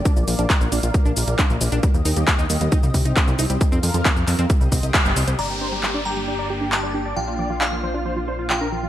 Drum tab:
CC |----------------|----------------|----------------|x---------------|
HH |x-oxx-oxx-oxx-ox|x-oxx-oxx-oxx-ox|x-oxx-oxx-oxx-ox|----------------|
SH |xxxxxxxxxxxxxxxx|xxxxxxxxxxxxxxxx|xxxxxxxxxxxxxxxx|----------------|
CP |----x-------x---|----x-------x---|----x-x-----x---|----x-------x---|
BD |o---o---o---o---|o---o---o-o-o---|o---o---o-o-o---|----------------|

CC |----------------|
HH |----------------|
SH |----------------|
CP |----x-------x---|
BD |----------------|